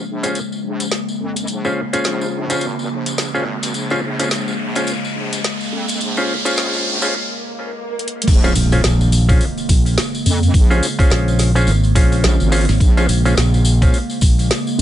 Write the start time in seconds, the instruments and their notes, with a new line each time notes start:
Already playing: wobble bass A#1, ambient pad C#3 G#3 A#3, riser
0.23 clav C#4 F4 G#4 C5, closed hi-hat, tambourine
0.35 closed hi-hat, tambourine
0.52 tambourine
0.63 wobble bass A#1
0.80 closed hi-hat, tambourine
0.91 snare, closed hi-hat, tambourine
1.08 tambourine
1.20 wobble bass F2
1.36 closed hi-hat, tambourine
1.47 wobble bass A#1, closed hi-hat, tambourine
1.65 clav C#4 F4 G#4 C5, tambourine
1.93 clav C#4 F4 G#4 C5, closed hi-hat, tambourine
2.04 wobble bass A#1, snare, closed hi-hat, tambourine
2.21 tambourine
2.50 clav C#4 F4 G#4 C5, closed hi-hat, tambourine
2.61 wobble bass G#1, closed hi-hat, tambourine
2.79 tambourine
2.89 wobble bass A#1
3.06 closed hi-hat, tambourine
3.18 wobble bass A#1, snare, closed hi-hat, tambourine
3.34 wobble bass G#1, clav C#4 F4 G#4 C5, tambourine
3.63 wobble bass G#1, snare, closed hi-hat, tambourine
3.74 wobble bass A#1, closed hi-hat, tambourine
3.90 clav C#4 F4 G#4 C5, snare, tambourine
4.03 wobble bass A#1
4.19 clav C#4 F4 G#4 C5, closed hi-hat, tambourine
4.31 wobble bass A#1, snare, closed hi-hat, tambourine
4.48 tambourine
4.75 clav C#4 F4 G#4 C5, closed hi-hat, tambourine
4.87 closed hi-hat, tambourine
5.05 tambourine
5.15 wobble bass A#1
5.33 closed hi-hat, tambourine
5.44 snare, closed hi-hat, tambourine
5.61 tambourine
5.72 wobble bass F2
5.88 closed hi-hat, tambourine
6.00 wobble bass A#1, closed hi-hat, tambourine
6.17 clav C#4 F4 G#4 C5, tambourine
6.45 clav C#4 F4 G#4 C5, closed hi-hat, tambourine
6.57 wobble bass A#1, snare, closed hi-hat, tambourine
6.73 tambourine
7.02 clav C#4 F4 G#4 C5, tambourine
7.14 swell
7.99 closed hi-hat
8.08 closed hi-hat
8.22 closed hi-hat
8.27 wobble bass A#1, ambient pad C#3 G#3 A#3, kick, open hi-hat, crash, tambourine, impact
8.44 clav C#4 F4 G#4 C5, snare, open hi-hat, tambourine
8.55 fingered electric bass A#1, open hi-hat, tambourine
8.72 clav C#4 F4 G#4 C5, open hi-hat, tambourine
8.84 fingered electric bass A#1, snare, open hi-hat, tambourine
9.01 open hi-hat, tambourine
9.12 open hi-hat, tambourine
9.29 clav C#4 F4 G#4 C5, kick, open hi-hat, tambourine
9.41 open hi-hat, tambourine
9.58 open hi-hat, tambourine
9.69 fingered electric bass A#1, kick, open hi-hat, tambourine
9.86 open hi-hat, tambourine
9.98 snare, open hi-hat, tambourine
10.15 open hi-hat, tambourine
10.26 wobble bass F2, open hi-hat, tambourine
10.43 open hi-hat, tambourine
10.54 wobble bass A#1, kick, open hi-hat, tambourine
10.70 clav C#4 F4 G#4 C5, open hi-hat, tambourine
10.83 open hi-hat, tambourine
10.99 clav C#4 F4 G#4 C5, kick, open hi-hat, tambourine
11.10 fingered electric bass A#1, snare, open hi-hat, tambourine
11.28 open hi-hat, tambourine
11.39 snare, open hi-hat, tambourine
11.55 clav C#4 F4 G#4 C5, open hi-hat, tambourine
11.67 fingered electric bass G#1, open hi-hat, tambourine
11.83 open hi-hat, tambourine
11.95 fingered electric bass A#1, clav C#4 F4 G#4 C5, kick, open hi-hat, tambourine
12.12 open hi-hat, tambourine
12.24 wobble bass A#1, snare, open hi-hat, tambourine
12.40 wobble bass G#1, open hi-hat, tambourine
12.52 clav C#4 F4 G#4 C5, open hi-hat, tambourine
12.56 open hi-hat
12.61 open hi-hat
12.65 open hi-hat, tambourine
12.69 fingered electric bass G#1, snare, open hi-hat
12.72 open hi-hat
12.75 open hi-hat
12.78 wobble bass A#1, kick, open hi-hat, tambourine
12.81 open hi-hat
12.97 clav C#4 F4 G#4 C5, snare, open hi-hat, tambourine
13.09 fingered electric bass A#1, open hi-hat, tambourine
13.25 clav C#4 F4 G#4 C5, open hi-hat, tambourine
13.37 fingered electric bass A#1, snare, open hi-hat, tambourine
13.54 open hi-hat, tambourine
13.65 open hi-hat, tambourine
13.82 clav C#4 F4 G#4 C5, kick, open hi-hat, tambourine
13.94 open hi-hat, tambourine
14.10 open hi-hat, tambourine
14.21 fingered electric bass A#1, kick, open hi-hat, tambourine
14.39 open hi-hat, tambourine
14.51 snare, open hi-hat, tambourine
14.67 open hi-hat, tambourine
14.78 wobble bass F2